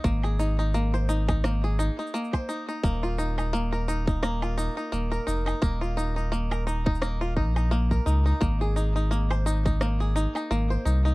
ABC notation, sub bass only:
X:1
M:4/4
L:1/8
Q:"Swing 16ths" 1/4=86
K:Ab
V:1 name="Sub bass" clef=bass
A,,,4- A,,, z3 | E,,,4- E,,, z E,,, F,,, | E,,,4- E,,, B,,,2 D,, | A,,,4- A,,, z A,,, C,, |]